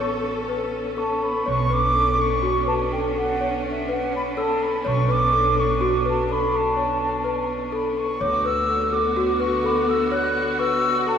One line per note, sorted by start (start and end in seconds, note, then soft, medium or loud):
0.00 1.44 A1 medium
0.00 8.17 B3 medium
0.00 8.17 C#4 medium
0.00 1.43 A4 medium
0.00 0.37 C#5 medium
0.00 0.67 C#6 medium
0.49 0.86 B4 medium
0.97 1.35 A4 medium
0.97 1.23 A5 medium
0.97 1.68 C#6 medium
1.22 1.49 B5 medium
1.46 4.82 B1 medium
1.46 8.17 D4 medium
1.46 1.65 C#5 medium
1.46 1.74 C#6 loud
1.70 1.89 B4 medium
1.70 2.22 D6 loud
1.94 2.13 A4 medium
2.18 2.38 A4 medium
2.18 2.66 C#6 loud
2.42 2.62 F#4 medium
2.67 2.86 B4 medium
2.67 2.73 A5 loud
2.92 3.11 A4 medium
2.92 2.98 G5 medium
3.16 3.35 A4 medium
3.16 3.63 F#5 loud
3.41 3.78 C#5 medium
3.70 3.94 E5 medium
3.89 4.25 B4 medium
3.89 4.15 F#5 loud
4.15 4.21 B5 medium
4.37 4.74 A4 medium
4.37 4.64 A5 medium
4.37 6.23 E6 medium
4.63 4.88 B5 medium
4.85 8.17 B1 medium
4.85 5.03 C#5 medium
4.85 5.12 C#6 loud
5.09 5.27 B4 medium
5.09 5.60 D6 loud
5.33 5.52 A4 medium
5.56 5.75 A4 medium
5.56 6.06 C#6 loud
5.81 5.99 F#4 medium
6.05 6.24 B4 medium
6.05 6.33 A5 medium
6.29 6.47 A4 medium
6.29 6.57 B5 loud
6.29 8.16 C#6 medium
6.53 6.71 A4 medium
6.53 7.47 A5 loud
6.77 7.13 C#5 medium
7.24 7.61 B4 medium
7.72 8.09 A4 medium
7.72 7.98 B5 medium
7.97 8.22 C#6 medium
8.20 11.18 D2 medium
8.20 11.18 D3 medium
8.20 11.18 B3 medium
8.20 11.18 F#4 loud
8.20 8.39 C#5 medium
8.20 8.47 D6 loud
8.45 8.63 B4 medium
8.45 8.94 E6 loud
8.69 8.87 A4 medium
8.92 9.11 A4 medium
8.92 9.42 D6 loud
9.17 9.35 F#4 medium
9.40 9.58 B4 medium
9.40 9.66 C#6 loud
9.64 9.82 A4 loud
9.64 11.18 B5 medium
9.64 9.90 D6 loud
9.88 10.06 A4 loud
9.88 10.13 E6 loud
10.11 10.48 C#5 medium
10.11 10.58 F#6 loud
10.59 10.96 B4 loud
10.59 11.18 C#6 medium
10.59 11.09 E6 loud
11.07 11.18 A4 medium
11.07 11.18 A5 loud